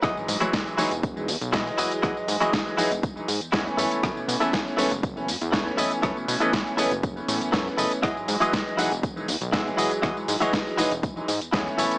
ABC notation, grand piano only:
X:1
M:4/4
L:1/16
Q:1/4=120
K:E
V:1 name="Grand piano" clef=bass
[E,F,G,d]3 [E,F,G,]3 [E,F,G,D] z2 [E,F,G,D] z2 [E,F,G,d]4 | [E,F,G,d]3 [E,F,G,d]3 [E,F,G,D] z2 [E,F,G,D] z2 [E,A,B,C]4 | [A,B,]3 [E,A,B,C]3 [E,A,B,C] z2 [E,A,B,C] z2 [E,A,B,C]4 | z3 [E,A,B,C]3 [E,A,B,C] z2 [E,A,B,C] [E,A,B,C]3 [E,A,B,C]3 |
[E,F,G,d]3 [E,F,G,d]3 [E,F,G,D] z2 [E,F,G,D] z2 [E,F,G,]4 | [E,F,G,]3 [E,F,G,d]3 [E,F,G,D] z2 [E,F,G,D] z2 [E,A,B,C]4 |]